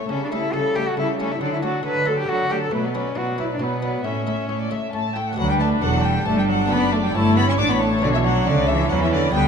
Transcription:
Already playing: cello A3
0.09 harpsichord C#3, cello section C#3, viola section G3, cello C#4, violin section A4 E5
0.24 cello D4
0.30 viola section G3, harpsichord A3 E4, cello E4, violin section A4 E5
0.53 cello section C#3, harpsichord C#3, viola section G3, violin section A4 E5, cello A4
0.74 viola section G3, harpsichord A3 E4, cello G4, violin section A4 E5
0.88 cello F#4
0.96 cello section C#3, harpsichord C#3, viola section G3, cello E4, violin section A4 E5
1.18 viola section G3, harpsichord A3 E4, cello C#4, violin section A4 E5
1.31 cello E4
1.40 cello section D3, harpsichord D3, viola section F#3, cello D4, violin section A4 D5
1.53 cello E4
1.62 viola section F#3, harpsichord A3 D4, cello F#4, violin section A4 D5
1.83 harpsichord D3, cello section D3, viola section F#3, violin section A4 D5, cello B4
2.06 viola section F#3, harpsichord A3 D4, violin section A4 D5, cello A4
2.19 cello G4
2.26 harpsichord D3, cello section D3, viola section F#3, cello F#4, violin section A4 D5
2.50 viola section F#3, harpsichord A3 D4, cello G4, violin section A4 D5
2.62 cello A4
2.71 harpsichord B2, cello section B2, viola section F#3, cello A3, violin section B4 D5
2.86 cello B3
2.94 viola section F#3, harpsichord B3 D4, cello C#4, violin section B4 D5
3.15 cello section B2, harpsichord B2, viola section F#3, cello F#4, violin section B4 D5
3.37 viola section F#3, harpsichord B3 D4, cello E4, violin section B4 D5
3.53 cello D4
3.59 cello section B2, harpsichord B2, viola section F#3, cello B3, violin section B4 D5
3.81 viola section F#3, harpsichord B3 D4, violin section B4 D5
4.03 cello section A2, harpsichord A2, viola section A3, cello C#4, violin section E5
4.25 harpsichord A3 E4, viola section A3, violin section E5
4.48 cello section A2, harpsichord A2, viola section A3, violin section C#5 E5
4.60 violin section D5
4.70 viola section A3, harpsichord A3 E4, violin section E5
4.92 harpsichord A2, cello section A2, viola section A3, violin section E5 A5
5.15 viola section A3, harpsichord A3 E4, violin section E5 G5
5.28 violin section F#5
5.33 harpsichord A3 D4 F#4
5.37 harpsichord D2, double bass section D2, cello section D2, cello F#3, viola section D4, violin section B4 F#5
5.49 cello G3, violin section G5
5.60 cello A3, violin section A5
5.81 double bass section E1, harpsichord E2, cello section E2, cello F#3, violin section A4 F#5
6.03 cello G3, violin section G5
6.25 double bass section G1, harpsichord G2, cello section G2, cello A3, viola section D4, violin section A4 A5
6.37 cello G3, violin section G5
6.48 cello F#3, violin section F#5
6.66 harpsichord A3 D4 F#4, cello B3
6.70 double bass section F#1, harpsichord F#2, cello section F#2, violin section D5 B5
6.92 cello A3, violin section A5
7.03 cello G3, violin section G5
7.14 double bass section G1, cello section G2, harpsichord G2, cello A3, viola section E4, violin section C#5 A5
7.37 cello B3, violin section B5
7.48 cello C#4, violin section C#6
7.58 double bass section A1, harpsichord A2, cello section A2, cello D4, viola section D4, violin section D6
7.70 cello B3, violin section B5
7.81 cello A3, violin section A5
7.99 cello D3, harpsichord B3 D4 F#4
8.03 double bass section B1, harpsichord B2, cello section B2, viola section D4, violin section D5
8.14 cello E3, violin section E5
8.24 cello F#3, violin section F#5
8.46 double bass section C#2, harpsichord C#3, cello section C#3, cello D3, violin section D5
8.68 cello E3, violin section E5
8.90 double bass section E2, harpsichord E3, cello section E3, cello F#3, viola section C#4, violin section B4 F#5
9.01 cello E3, violin section E5
9.12 cello D3, violin section D5
9.31 cello G3, harpsichord B3 D4 F#4, violin section G5
9.35 double bass section D2, harpsichord D3, cello section D3, viola section B3, violin section B4

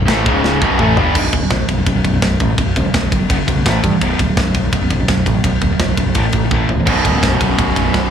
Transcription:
0.08 picked electric bass A1, distorted electric guitar A2 E3 A3, snare, china
0.26 picked electric bass C#1, distorted electric guitar C#2 G#2 C#3, kick
0.44 snare
0.61 picked electric bass B0, distorted electric guitar B1 F#2 B2, kick
0.79 picked electric bass A1, distorted electric guitar A2 E3 A3, mid tom
0.97 picked electric bass G1, distorted electric guitar G2 D3 G3, floor tom
1.15 picked electric bass B0, distorted electric guitar B1 F#2 B2, kick, crash
1.33 picked electric bass D1, distorted electric guitar B1 F#2, kick, ride
1.43 distorted electric guitar B1 F#2
1.50 picked electric bass B0, distorted electric guitar B1 F#2, kick, snare, ride
1.60 distorted electric guitar B1 F#2
1.69 picked electric bass B0, distorted electric guitar B1 F#2, kick, ride
1.78 distorted electric guitar B1 F#2
1.86 picked electric bass B0, distorted electric guitar B1 F#2, kick, ride
1.96 distorted electric guitar B1 F#2
2.05 picked electric bass B0, distorted electric guitar B1 F#2, kick, ride
2.14 distorted electric guitar B1 F#2
2.22 picked electric bass B0, distorted electric guitar B1 F#2, kick, snare, ride
2.40 picked electric bass A1, distorted electric guitar B1 F#2, kick, ride
2.50 distorted electric guitar B1 F#2
2.57 picked electric bass B0, distorted electric guitar B1 F#2, kick, ride
2.76 picked electric bass D1, distorted electric guitar B1 F#2, kick, ride
2.85 distorted electric guitar B1 F#2
2.94 picked electric bass B0, distorted electric guitar B1 F#2, kick, snare, ride
3.03 distorted electric guitar B1 F#2
3.11 picked electric bass G1, distorted electric guitar B1 F#2, kick, ride
3.20 distorted electric guitar B1 F#2
3.29 picked electric bass F#1, distorted electric guitar F#2 C#3 F#3, kick, ride
3.38 distorted electric guitar F#2 C#3
3.47 picked electric bass B1, distorted electric guitar F#2 C#3, kick, ride
3.57 distorted electric guitar F#2 C#3
3.65 picked electric bass A1, distorted electric guitar A2 E3 A3, kick, snare, ride
3.84 picked electric bass G2, distorted electric guitar A2 E3, kick, ride
3.93 distorted electric guitar A2 E3
4.01 picked electric bass B0, distorted electric guitar B1 F#2 B2, kick, ride
4.19 picked electric bass D1, distorted electric guitar B1 F#2, kick, ride
4.29 distorted electric guitar B1 F#2
4.37 picked electric bass B0, distorted electric guitar B1 F#2, kick, snare, ride
4.47 distorted electric guitar B1 F#2
4.54 picked electric bass B0, distorted electric guitar B1 F#2, kick, ride
4.64 distorted electric guitar B1 F#2
4.73 picked electric bass B0, distorted electric guitar B1 F#2, kick, ride
4.82 distorted electric guitar B1 F#2
4.90 picked electric bass B0, distorted electric guitar B1 F#2, kick, ride
5.00 distorted electric guitar B1 F#2
5.08 picked electric bass B0, distorted electric guitar B1 F#2, kick, snare, ride
5.26 picked electric bass A1, distorted electric guitar B1 F#2, kick, ride
5.34 distorted electric guitar B1 F#2
5.44 picked electric bass B0, distorted electric guitar B1 F#2, kick, ride
5.61 picked electric bass D1, distorted electric guitar B1 F#2, kick, ride
5.73 distorted electric guitar B1 F#2
5.79 picked electric bass B0, distorted electric guitar B1 F#2, kick, snare, ride
5.90 distorted electric guitar B1 F#2
5.97 picked electric bass B0, distorted electric guitar B1 F#2, kick, ride
6.07 distorted electric guitar B1 F#2
6.15 picked electric bass A1, distorted electric guitar A2 E3 A3, kick, ride
6.26 distorted electric guitar A2 E3
6.32 picked electric bass A1, distorted electric guitar A2 E3, kick, ride
6.45 distorted electric guitar A2 E3
6.51 picked electric bass A1, distorted electric guitar A2 E3 A3, kick, high tom
6.69 picked electric bass C#1, distorted electric guitar A2 E3, floor tom
6.80 distorted electric guitar A2 E3
6.87 picked electric bass B0, distorted electric guitar B1 F#2 B2, kick, crash
7.05 picked electric bass D1, distorted electric guitar B1 F#2, kick, ride
7.15 distorted electric guitar B1 F#2
7.23 picked electric bass B0, distorted electric guitar B1 F#2, kick, snare, ride
7.33 distorted electric guitar B1 F#2
7.40 picked electric bass B0, distorted electric guitar B1 F#2, kick, ride
7.50 distorted electric guitar B1 F#2
7.58 picked electric bass B0, distorted electric guitar B1 F#2, kick, ride
7.67 distorted electric guitar B1 F#2
7.76 picked electric bass B0, distorted electric guitar B1 F#2, kick, ride
7.85 distorted electric guitar B1 F#2
7.94 picked electric bass B0, distorted electric guitar B1 F#2, kick, snare, ride

